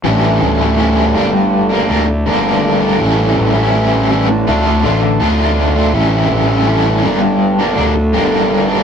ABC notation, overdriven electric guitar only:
X:1
M:4/4
L:1/16
Q:1/4=81
K:none
V:1 name="Overdriven electric guitar"
[A,,E,G,^CE]3 [G,CE] [A,,E,G,CE]2 [G,,D,G,_B,D]3 [G,B,D] [D,G,B,D]2 [G,,D,G,B,D]3 [G,B,D] | [A,,E,G,^CE]3 [G,CE] [A,,E,G,CE]2 [E,G,CE]2 [D,A,DF] [A,DF] [D,A,DF]2 [D,A,DF]3 [A,DF] | [A,,E,G,^CE]3 [G,CE] [A,,E,G,CE]2 [G,,D,G,_B,D]3 [G,B,D] [D,G,B,D]2 [G,,D,G,B,D]3 [G,B,D] |]